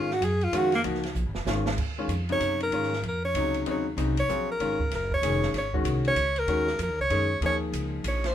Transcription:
0.00 0.20 G#2 medium
0.00 0.14 F4 medium
0.11 0.26 F#4 loud
0.11 snare soft
0.21 0.51 F#2 loud
0.21 0.45 G#4 loud
0.21 hi-hat pedal medium
0.21 ride medium
0.41 0.57 F4 loud
0.41 ride soft
0.52 0.83 F2 medium
0.52 0.71 D#3 medium
0.52 0.71 G#3 medium
0.52 0.71 C#4 medium
0.52 0.71 F4 medium
0.52 hi-hat pedal medium
0.52 ride medium
0.56 0.74 F#4 loud
0.72 0.81 A#3 loud
0.72 snare medium
0.72 ride medium
0.84 1.14 C#2 medium
0.84 1.02 F3 medium
0.84 1.02 A#3 medium
0.84 1.02 D#4 medium
0.84 1.02 F#4 medium
0.84 ride medium
0.95 snare soft
1.03 snare soft
1.03 ride medium
1.15 1.25 A#1 loud
1.15 hi-hat pedal medium
1.25 1.35 G#1 medium
1.35 1.45 F#1 medium
1.35 snare medium
1.45 1.77 G#1 medium
1.45 1.65 D#3 medium
1.45 1.65 G#3 medium
1.45 1.65 C#4 medium
1.45 1.65 F4 medium
1.45 snare loud
1.45 hi-hat pedal medium
1.66 snare medium
1.77 2.07 D#2 medium
1.77 kick medium
1.77 crash medium
1.98 2.09 D#3 medium
1.98 2.09 G#3 medium
1.98 2.09 C#4 medium
1.98 2.09 F4 medium
2.08 2.39 F2 medium
2.08 hi-hat pedal medium
2.08 ride medium
2.29 2.70 C3 medium
2.29 2.70 C#3 medium
2.29 2.70 F#3 medium
2.29 2.70 D#4 medium
2.29 2.60 C#5 loud
2.29 ride soft
2.40 2.71 F#2 medium
2.40 hi-hat pedal medium
2.40 ride medium
2.60 3.02 A#4 loud
2.60 ride medium
2.71 3.02 G#2 medium
2.71 2.90 D#3 medium
2.71 2.90 G#3 medium
2.71 2.90 C#4 medium
2.71 2.90 F4 medium
2.71 ride medium
2.83 snare soft
2.93 snare soft
3.02 3.33 F2 loud
3.02 ride medium
3.08 3.24 A#4 medium
3.25 3.64 C#5 loud
3.34 3.65 C#2 medium
3.34 3.82 C3 medium
3.34 3.65 C#3 medium
3.34 3.65 F#3 medium
3.34 3.65 D#4 medium
3.34 hi-hat pedal medium
3.34 ride medium
3.54 ride soft
3.66 3.96 D#2 medium
3.66 3.84 C#3 medium
3.66 3.84 F#3 medium
3.66 3.84 C4 medium
3.66 3.84 D#4 medium
3.66 ride medium
3.71 3.87 C#5 medium
3.97 4.27 C2 medium
3.97 4.15 C#3 medium
3.97 4.15 F#3 medium
3.97 4.15 C4 medium
3.97 4.15 D#4 medium
3.97 hi-hat pedal soft
3.97 ride medium
4.17 4.48 C#5 loud
4.17 ride medium
4.28 4.59 A#1 medium
4.28 4.47 F#3 medium
4.28 4.47 C4 medium
4.28 4.47 F4 medium
4.28 4.47 G#4 medium
4.28 hi-hat pedal medium
4.52 4.90 A#4 medium
4.60 4.90 G#1 medium
4.60 4.78 D#3 medium
4.60 4.78 G#3 medium
4.60 4.78 C#4 medium
4.60 4.78 F4 medium
4.60 ride medium
4.80 kick medium
4.91 5.21 F#1 medium
4.91 snare soft
4.91 ride medium
4.95 5.12 A#4 medium
5.11 5.53 C#5 loud
5.11 kick medium
5.22 5.52 F1 medium
5.22 5.54 D#3 medium
5.22 5.54 G#3 medium
5.22 5.54 C#4 medium
5.22 5.54 G#4 medium
5.22 hi-hat pedal medium
5.22 ride medium
5.42 snare medium
5.53 5.83 G#1 medium
5.53 snare soft
5.53 ride medium
5.58 5.74 C#5 medium
5.74 6.14 D#3 medium
5.74 6.14 G#3 medium
5.74 6.14 C#4 medium
5.74 6.15 F#4 medium
5.74 kick medium
5.84 6.15 C2 medium
5.84 hi-hat pedal medium
5.84 ride medium
6.05 6.40 C#5 loud
6.05 ride soft
6.15 6.46 C#2 medium
6.15 hi-hat pedal medium
6.15 ride medium
6.36 6.80 A#4 loud
6.36 ride medium
6.47 6.78 D#2 medium
6.47 6.66 D#3 medium
6.47 6.66 G#3 medium
6.47 6.66 C#4 medium
6.47 6.66 F#4 medium
6.47 ride medium
6.67 snare medium
6.79 6.89 F2 loud
6.79 hi-hat pedal medium
6.79 ride medium
6.83 6.99 A#4 medium
6.89 6.99 D#2 medium
6.99 7.09 C#2 medium
6.99 7.40 C#5 loud
7.10 7.40 F#2 medium
7.10 7.28 D#3 medium
7.10 7.28 G#3 medium
7.10 7.28 C#4 medium
7.10 7.28 G#4 medium
7.10 ride medium
7.41 7.71 D#2 medium
7.41 8.29 F3 medium
7.41 8.29 A#3 medium
7.41 8.29 D#4 medium
7.41 8.29 G#4 medium
7.41 ride medium
7.46 7.56 C#5 loud
7.72 8.03 C#2 medium
7.72 hi-hat pedal medium
7.72 ride medium
8.04 8.34 A#1 medium
8.04 hi-hat pedal medium
8.04 ride medium
8.08 8.29 C#5 loud
8.24 8.35 C5 medium
8.24 snare medium
8.24 ride medium

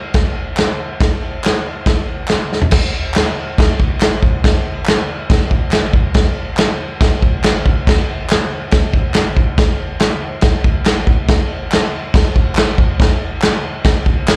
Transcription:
0.14 kick loud
0.14 snare loud
0.14 crash medium
0.57 snare loud
0.57 clap loud
0.57 crash medium
1.00 kick loud
1.00 snare loud
1.00 crash medium
1.44 snare loud
1.44 clap loud
1.44 crash medium
1.86 kick loud
1.86 snare loud
1.86 crash medium
2.28 snare loud
2.28 clap loud
2.28 crash medium
2.53 snare medium
2.62 floor tom medium
2.71 kick loud
2.71 snare loud
2.71 crash loud
2.71 crash medium
3.14 snare loud
3.14 clap loud
3.14 crash medium
3.58 kick loud
3.58 snare loud
3.58 crash medium
3.80 kick medium
4.01 snare loud
4.01 clap loud
4.01 crash medium
4.23 kick medium
4.44 kick loud
4.44 snare loud
4.44 crash medium
4.86 snare loud
4.86 clap loud
4.86 crash medium
5.30 kick loud
5.30 snare loud
5.30 crash medium
5.51 kick medium
5.71 snare loud
5.71 clap medium
5.71 crash medium
5.93 kick medium
6.14 kick loud
6.14 snare loud
6.14 crash medium
6.57 snare loud
6.57 clap loud
6.57 crash medium
7.01 kick loud
7.01 snare loud
7.01 crash medium
7.22 kick medium
7.43 snare loud
7.43 clap loud
7.43 crash medium
7.66 kick medium
7.87 kick loud
7.87 snare loud
7.87 crash medium
8.30 snare loud
8.30 clap loud
8.30 crash medium
8.71 kick loud
8.71 snare loud
8.71 crash medium
8.94 kick loud
9.14 snare loud
9.14 clap loud
9.14 crash medium
9.37 kick medium
9.58 kick loud
9.58 snare loud
9.58 crash medium
10.00 snare loud
10.00 clap loud
10.00 crash medium
10.41 kick loud
10.41 snare loud
10.41 crash medium
10.64 kick loud
10.85 snare loud
10.85 clap loud
10.85 crash medium
11.07 kick medium
11.28 kick loud
11.28 snare loud
11.28 crash medium
11.72 snare loud
11.72 clap loud
11.72 crash medium
12.14 kick loud
12.14 snare loud
12.14 crash medium
12.36 kick medium
12.55 snare loud
12.55 clap loud
12.55 crash medium
12.78 kick medium
13.00 kick loud
13.00 snare loud
13.00 crash medium
13.42 snare loud
13.42 clap loud
13.42 crash medium
13.84 kick loud
13.84 snare loud
13.84 crash medium
14.06 kick medium
14.27 snare loud
14.27 clap loud
14.27 crash medium

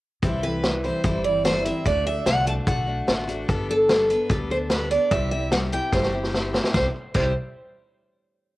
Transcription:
0.22 0.88 C2 medium
0.22 0.43 C3 medium
0.22 0.43 E3 medium
0.22 0.43 G3 medium
0.22 0.42 C4 medium
0.22 0.41 E4 medium
0.22 kick loud
0.22 closed hi-hat medium
0.42 0.63 G3 soft
0.42 0.63 C4 soft
0.42 0.63 E4 soft
0.42 0.85 B4 medium
0.63 0.84 E3 medium
0.63 0.83 G3 medium
0.63 0.82 C4 medium
0.63 0.81 E4 medium
0.63 snare medium
0.63 closed hi-hat medium
0.82 1.04 G3 soft
0.82 1.04 C4 soft
0.82 1.04 E4 soft
0.82 1.03 C5 medium
0.82 closed hi-hat medium
1.04 1.70 G1 medium
1.04 1.25 C3 medium
1.04 1.25 E3 medium
1.04 1.25 G3 medium
1.04 1.24 C4 medium
1.04 1.22 E4 medium
1.04 1.24 C5 medium
1.04 kick loud
1.04 closed hi-hat medium
1.24 1.43 G3 soft
1.24 1.44 C4 soft
1.24 1.45 E4 soft
1.24 1.44 D5 medium
1.44 1.65 E3 medium
1.44 1.65 G3 medium
1.44 1.65 C4 medium
1.44 1.63 E4 medium
1.44 1.65 C5 medium
1.44 snare loud
1.44 closed hi-hat medium
1.65 1.85 G3 soft
1.65 1.85 C4 medium
1.65 1.86 E4 medium
1.65 1.86 E5 medium
1.65 closed hi-hat medium
1.85 2.19 D2 medium
1.85 2.06 D3 medium
1.85 2.06 A3 medium
1.85 2.05 D4 medium
1.85 2.04 F#4 medium
1.85 2.05 D5 medium
1.85 kick loud
1.85 closed hi-hat medium
2.05 2.25 A3 soft
2.05 2.26 D4 soft
2.05 2.26 F#4 soft
2.05 2.26 E5 medium
2.26 2.61 C2 medium
2.26 2.47 D3 medium
2.26 2.47 A3 medium
2.26 2.46 D4 medium
2.26 2.45 F#4 medium
2.26 2.47 F#5 loud
2.26 snare medium
2.26 closed hi-hat medium
2.46 2.66 A3 soft
2.46 2.67 D4 soft
2.46 2.67 F#4 soft
2.46 2.53 A5 medium
2.46 closed hi-hat medium
2.67 3.02 B1 medium
2.67 2.88 D3 medium
2.67 2.87 A3 medium
2.67 2.87 D4 medium
2.67 2.85 F#4 medium
2.67 3.25 F#5 medium
2.67 kick loud
2.67 closed hi-hat medium
2.86 3.07 A3 soft
2.86 3.08 D4 soft
2.86 3.08 F#4 soft
3.08 3.43 A1 medium
3.08 3.28 D3 medium
3.08 3.29 A3 medium
3.08 3.28 D4 medium
3.08 3.26 F#4 medium
3.08 snare loud
3.08 closed hi-hat medium
3.28 3.49 A3 medium
3.28 3.48 D4 medium
3.28 3.48 F#4 medium
3.28 closed hi-hat medium
3.48 4.14 G1 medium
3.48 3.69 G3 medium
3.48 3.69 B3 medium
3.48 3.68 D4 medium
3.48 3.67 A4 medium
3.48 kick loud
3.48 closed hi-hat medium
3.69 3.89 B3 soft
3.69 3.89 D4 soft
3.69 3.89 A4 soft
3.69 4.12 A4 medium
3.89 4.10 G3 medium
3.89 4.10 B3 medium
3.89 4.09 D4 medium
3.89 4.08 A4 medium
3.89 snare loud
3.89 closed hi-hat medium
4.09 4.29 B3 soft
4.09 4.30 D4 soft
4.09 4.30 A4 soft
4.09 4.29 B4 medium
4.09 closed hi-hat medium
4.30 4.96 D2 medium
4.30 4.50 G3 medium
4.30 4.51 B3 medium
4.30 4.50 D4 medium
4.30 4.49 A4 medium
4.30 4.36 B4 medium
4.30 kick loud
4.30 closed hi-hat medium
4.50 4.70 B3 soft
4.50 4.71 D4 soft
4.50 4.71 A4 soft
4.50 4.57 C5 medium
4.70 4.91 G3 medium
4.70 4.91 B3 medium
4.70 4.91 D4 medium
4.70 4.90 A4 medium
4.70 4.90 B4 medium
4.70 snare loud
4.70 closed hi-hat medium
4.91 5.11 B3 soft
4.91 5.12 D4 medium
4.91 5.11 A4 medium
4.91 5.12 D5 medium
4.91 closed hi-hat medium
5.11 5.77 C2 medium
5.11 5.32 C3 medium
5.11 5.32 G3 medium
5.11 5.32 C4 medium
5.11 5.31 E4 medium
5.11 5.30 G4 medium
5.11 5.30 E5 loud
5.11 kick loud
5.11 closed hi-hat medium
5.31 5.51 C4 soft
5.31 5.51 E4 soft
5.31 5.52 G4 soft
5.31 5.52 E5 medium
5.51 5.72 G3 medium
5.51 5.72 C4 medium
5.51 5.71 E4 medium
5.51 5.71 G4 medium
5.51 5.58 F#5 loud
5.51 snare loud
5.51 closed hi-hat medium
5.72 5.92 C4 soft
5.72 5.92 E4 soft
5.72 5.92 G4 medium
5.72 5.92 G5 loud
5.72 closed hi-hat medium
5.92 6.58 G1 medium
5.92 6.13 C3 medium
5.92 6.13 G3 medium
5.92 6.13 C4 medium
5.92 6.13 E4 medium
5.92 6.12 G4 medium
5.92 6.50 C5 medium
5.92 kick loud
5.92 snare medium
6.03 snare soft
6.13 6.32 C4 soft
6.13 6.33 E4 soft
6.13 6.33 G4 medium
6.24 snare medium
6.32 6.53 G3 medium
6.32 6.53 C4 medium
6.32 6.52 E4 medium
6.32 6.51 G4 medium
6.32 snare medium
6.53 6.74 C4 medium
6.53 6.74 E4 medium
6.53 6.73 G4 medium
6.53 snare medium
6.64 snare medium
6.74 6.85 C2 medium
6.74 6.86 C3 medium
6.74 6.86 G3 medium
6.74 6.87 C4 medium
6.74 6.87 E4 medium
6.74 6.87 G4 medium
6.74 6.85 C5 medium
6.74 kick loud
6.74 snare medium
7.14 7.34 C2 medium
7.14 7.30 C3 medium
7.14 7.31 G3 medium
7.14 7.31 C4 medium
7.14 7.32 E4 medium
7.14 7.32 G4 medium
7.14 7.33 C5 medium
7.14 kick loud
7.14 crash medium

